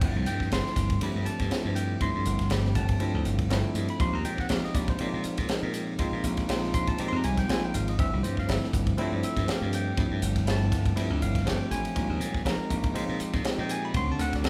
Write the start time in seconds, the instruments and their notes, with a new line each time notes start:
Already playing: tine electric piano G5
0.01 slap bass G1, tine electric piano F3 A3 C4 D4 E4, kick, crash, ride
0.16 slap bass C2
0.26 slap bass G2, tine electric piano G5, hi-hat pedal, ride
0.40 kick, snare
0.51 slap bass G1, tine electric piano F3 A3 C4 D4 E4 C6, snare, ride
0.66 snare
0.76 slap bass G1, kick, snare, hi-hat pedal, ride
0.90 kick, ride
1.01 slap bass G2, tine electric piano F3 A3 C4 D4 G4 B5, ride
1.15 slap bass G2
1.26 tine electric piano A5, muted slap bass stroke, hi-hat pedal, ride
1.40 slap bass G2, kick, snare, ride
1.50 tine electric piano F3 A3 C4 D4 E4, snare, ride
1.65 slap bass G2
1.75 tine electric piano G5, hi-hat pedal, ride
2.00 slap bass G2, tine electric piano F3 A3 C4 D4 E4 C6, kick, ride
2.15 slap bass G2
2.26 slap bass G1, hi-hat pedal, ride
2.39 kick, snare, ride
2.50 slap bass G1, tine electric piano F3 A3 C4 D4 G4 B5, snare, ride
2.65 snare
2.75 slap bass G1, tine electric piano A5, kick, hi-hat pedal, ride
2.89 kick, ride
2.99 slap bass G2, tine electric piano F3 A3 C4 D4 E4, ride
3.14 slap bass D2
3.25 slap bass G1, hi-hat pedal, ride
3.39 kick, ride
3.50 slap bass G1, tine electric piano F3 A3 C4 D4 E4, snare, ride
3.75 slap bass G2, hi-hat pedal, ride
3.88 tine electric piano B5, ride
4.00 slap bass A#1, tine electric piano F3 G#3 C4 D#4 G4 C6, kick, ride
4.13 slap bass D#2, tine electric piano A#5
4.24 slap bass A#2, tine electric piano G5, hi-hat pedal, ride
4.38 tine electric piano F#5, kick, snare
4.49 slap bass A#1, tine electric piano F3 G#3 C4 D#4 G4 F5, snare, ride
4.64 tine electric piano D#5, muted slap bass stroke, snare
4.75 slap bass A#1, tine electric piano D5, kick, snare, hi-hat pedal, ride
4.88 tine electric piano C5, kick, ride
4.99 slap bass A#2, tine electric piano F3 G#3 C4 D#4 F4 D5, ride
5.14 slap bass A#2
5.24 muted slap bass stroke, hi-hat pedal, ride
5.37 slap bass A#2, kick, snare, ride
5.49 tine electric piano F3 G#3 C4 D#4 A#4, snare, ride
5.63 slap bass A#2
5.74 hi-hat pedal, ride
5.98 slap bass A#2, tine electric piano F3 G#3 C4 D#4 F4, kick, ride
6.13 slap bass A#2
6.24 slap bass A#1, hi-hat pedal, ride
6.37 kick, snare, ride
6.48 slap bass A#1, tine electric piano F3 G#3 C4 D#4 F4, snare, ride
6.63 snare
6.74 slap bass A#1, tine electric piano C6, kick, hi-hat pedal, ride
6.87 tine electric piano A5, kick, ride
6.98 slap bass A#2, tine electric piano F3 G#3 C4 D#4 G4 A#5, ride
7.08 tine electric piano C6
7.12 slap bass F2
7.17 tine electric piano A#5
7.24 slap bass C2, tine electric piano G#5, hi-hat pedal, ride
7.37 tine electric piano G5, kick, snare, ride
7.48 slap bass A#1, tine electric piano F3 G#3 C4 D#4 F4 G#5, snare, ride
7.64 tine electric piano G5
7.74 slap bass G#1, tine electric piano F5, hi-hat pedal, ride
7.88 tine electric piano D#5, ride
7.98 slap bass G1, tine electric piano F3 A3 C4 D4 E4 E5, kick, ride
8.13 slap bass C2, tine electric piano G4
8.23 slap bass G2, tine electric piano C5, hi-hat pedal, ride
8.37 tine electric piano F5, kick, snare
8.47 slap bass G1, tine electric piano F3 A3 C4 D4 E4 E5, snare, ride
8.64 tine electric piano A4, snare
8.73 slap bass G1, kick, hi-hat pedal, ride
8.87 kick, ride
8.97 slap bass G2, tine electric piano F3 A3 C4 D4 E4, ride
9.12 slap bass G2
9.23 tine electric piano E5, muted slap bass stroke, hi-hat pedal, ride
9.37 slap bass G2, kick, snare, ride
9.47 tine electric piano F3 A3 C4 D4 G4 F5, snare, ride
9.62 slap bass G2
9.73 tine electric piano G5, hi-hat pedal, ride
9.97 slap bass G2, tine electric piano F3 A3 C4 D4 E4, kick, ride
10.11 slap bass G2
10.22 slap bass G1, hi-hat pedal, ride
10.36 kick, snare, ride
10.46 slap bass G1, tine electric piano F3 A3 C4 D4 E4, snare, ride
10.50 tine electric piano A5
10.72 slap bass G1, kick, snare, hi-hat pedal, ride
10.85 kick, ride
10.95 slap bass G2, tine electric piano F3 A3 C4 D4 E4, ride
11.10 slap bass D2
11.22 slap bass G1, tine electric piano F5, hi-hat pedal, ride
11.35 kick, snare, ride
11.45 slap bass G1, tine electric piano F3 A3 C4 D4 G4 G5, snare, ride
11.71 slap bass A1, tine electric piano G#5, hi-hat pedal, ride
11.85 ride
11.95 slap bass A#1, tine electric piano F3 G3 G#3 C4 D#4, kick, ride
12.10 slap bass D#2
12.20 slap bass A#2, hi-hat pedal, ride
12.34 kick, snare
12.45 slap bass A#1, tine electric piano F3 G#3 C4 D#4 A#4 A#5, snare, ride
12.59 muted slap bass stroke
12.70 slap bass A#1, kick, hi-hat pedal, ride
12.84 kick, ride
12.94 slap bass A#2, tine electric piano F3 G#3 C4 D#4 F4, ride
13.09 slap bass A#2
13.20 muted slap bass stroke, hi-hat pedal, ride
13.33 slap bass A#2, kick, snare, ride
13.44 tine electric piano F3 G#3 C4 D#4 G4, snare, ride
13.59 slap bass A#2, tine electric piano G5
13.69 tine electric piano G#5, hi-hat pedal, ride
13.85 tine electric piano B5
13.94 slap bass D2, tine electric piano D#3 A3 C4 D4 F#4 C6, kick, ride
14.08 slap bass D3, tine electric piano A5
14.19 slap bass D2, tine electric piano F#5, hi-hat pedal, ride
14.33 tine electric piano D5, kick, snare, ride
14.43 slap bass D2, tine electric piano D#3 A3 C4 D4 A4, snare, ride